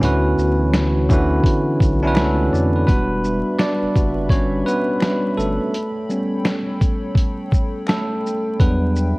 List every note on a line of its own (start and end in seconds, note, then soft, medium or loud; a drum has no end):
0.00 0.35 D2 loud
0.00 0.69 D3 medium
0.00 2.84 E3 medium
0.00 2.84 B3 medium
0.00 0.69 C#4 medium
0.00 0.70 E4 medium
0.00 2.83 F#4 medium
0.00 0.71 F#4 medium
0.00 2.84 C#5 medium
0.00 closed hi-hat medium
0.05 0.71 B4 loud
0.38 1.41 D2 loud
0.38 shaker soft
0.73 finger snap medium
0.73 snare loud
0.73 closed hi-hat medium
1.09 1.69 D3 loud
1.09 1.70 C#4 medium
1.09 1.70 E4 medium
1.09 1.71 F#4 medium
1.09 kick loud
1.09 shaker medium
1.13 1.71 B4 loud
1.44 kick medium
1.44 closed hi-hat medium
1.80 2.18 B1 loud
1.80 kick medium
1.80 closed hi-hat soft
1.80 shaker medium
2.03 2.54 C#4 medium
2.03 2.54 D4 loud
2.03 2.55 E4 medium
2.03 2.55 F#4 medium
2.07 2.18 B4 loud
2.15 2.49 C#2 loud
2.15 2.84 A3 medium
2.15 2.89 A4 medium
2.15 2.50 E5 medium
2.15 finger snap medium
2.15 snare loud
2.15 closed hi-hat medium
2.52 2.85 F2 loud
2.52 2.74 D5 medium
2.52 shaker soft
2.75 2.85 B4 medium
2.87 3.43 E1 medium
2.87 3.91 G3 medium
2.87 5.70 G3 medium
2.87 3.56 B3 medium
2.87 3.59 D4 medium
2.87 3.91 F#4 medium
2.87 3.61 B4 loud
2.87 5.71 B4 medium
2.87 5.71 E5 medium
2.87 8.55 B5 medium
2.87 kick loud
2.87 closed hi-hat medium
3.24 shaker soft
3.59 3.94 D4 medium
3.59 4.26 D5 loud
3.59 finger snap medium
3.59 snare loud
3.59 closed hi-hat medium
3.82 3.87 F#1 medium
3.95 4.28 F#1 loud
3.95 4.27 G3 medium
3.95 4.27 D4 soft
3.95 4.27 F#4 medium
3.95 kick medium
3.95 closed hi-hat soft
3.95 shaker soft
4.29 4.63 G1 loud
4.29 4.65 C#4 medium
4.29 4.67 C#5 loud
4.29 kick loud
4.29 closed hi-hat medium
4.66 5.34 B3 medium
4.66 5.40 B4 medium
4.66 shaker medium
5.00 finger snap medium
5.00 snare loud
5.00 closed hi-hat medium
5.38 5.59 G1 medium
5.38 6.42 A3 medium
5.38 6.41 A4 medium
5.38 shaker soft
5.73 8.56 A4 medium
5.73 8.56 C#5 medium
5.73 9.19 G5 medium
5.73 closed hi-hat medium
6.10 6.61 G3 medium
6.10 6.61 B3 medium
6.10 6.61 C#4 medium
6.10 shaker soft
6.45 finger snap medium
6.45 snare loud
6.45 closed hi-hat medium
6.81 kick medium
6.81 closed hi-hat soft
6.81 shaker soft
7.15 kick loud
7.15 closed hi-hat medium
7.52 kick loud
7.52 shaker medium
7.86 8.56 A3 medium
7.86 8.61 A4 loud
7.86 finger snap medium
7.86 snare loud
7.86 closed hi-hat medium
8.26 shaker soft
8.59 9.14 E2 loud
8.59 9.11 F#3 medium
8.59 9.11 G3 medium
8.59 9.19 B3 medium
8.59 9.12 D4 medium
8.59 9.19 B4 medium
8.59 9.19 B4 loud
8.59 9.19 E5 medium
8.59 kick loud
8.59 closed hi-hat medium
8.96 shaker soft